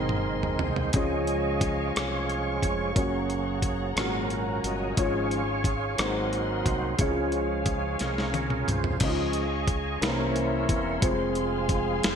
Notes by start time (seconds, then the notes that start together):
Already playing: F#1 G#2 D#3 G#3 C4 D#4 A#4 C5 D#5 G#5 C6
0.09 mid tom
0.43 floor tom
0.59 C2 D#3 G#3 C4, floor tom
0.64 C5
0.76 floor tom
0.93 C#2 C#3 F3 G#3 C#4 F4 G#4 C#5 D#5 F5 C#6, kick, closed hi-hat
1.27 closed hi-hat
1.61 kick, closed hi-hat
1.96 C2 F4 G#4 C#5, cross-stick, closed hi-hat
2.29 closed hi-hat
2.63 F1, kick, closed hi-hat
2.95 F#1 F#3 A#3 C#4 F#4 C#5 F#5 A#5, kick, closed hi-hat
2.99 G#4
3.30 closed hi-hat
3.62 kick, closed hi-hat
3.96 G#1 A#2 F#3 G#3 C#4 F#4 A#4 C#5 G#5, cross-stick, closed hi-hat
4.00 A#3 C#4 F#4 A#4
4.30 closed hi-hat
4.64 G1 D#5, closed hi-hat
4.97 G#1 G#2 F3 G#3 C#4 F4 G#4 C#5 F5 C#6, kick, closed hi-hat
5.31 closed hi-hat
5.64 kick, closed hi-hat
5.97 G#1 G#2 F#3 G#3 A#3 C4 D#4 F#4 A#4 C5 D#5 F#5 C6, cross-stick, closed hi-hat
6.33 closed hi-hat
6.64 C2 C5, kick, closed hi-hat
6.97 C#2 C#3 F3 G#3 C#4 E4 F4 G#4 C#5 F5 G#5, kick, closed hi-hat
7.01 C#4 C#5
7.07 F4
7.32 closed hi-hat
7.66 kick, closed hi-hat
7.99 C2 F3 G#3 C#4 F4 G#4 A#4 C#5, snare, closed hi-hat
8.18 snare
8.34 closed hi-hat, high tom
8.50 mid tom
8.68 C2 C5, closed hi-hat, mid tom
8.84 floor tom
9.00 C#2 C#3 F3 G#3 C#4 D#4 G#4 C#5 D#5 F5 G#5 C#6, kick, closed hi-hat, crash
9.09 F4
9.33 closed hi-hat
9.68 kick, closed hi-hat
10.01 C2 C3 A#3 C#4 E4 B4 E5 A#5 C6, snare, closed hi-hat
10.05 E3 C#4 E4 A#4 C#5
10.10 C5
10.36 closed hi-hat
10.69 E1, kick, closed hi-hat
11.00 F1 C3 F3 G3 G#3 C4 F4 G#4 C5 F5 G#5, kick, closed hi-hat
11.04 G#3 C4
11.35 closed hi-hat
11.69 kick, closed hi-hat
12.03 F1 F4 G#4 C5, snare, closed hi-hat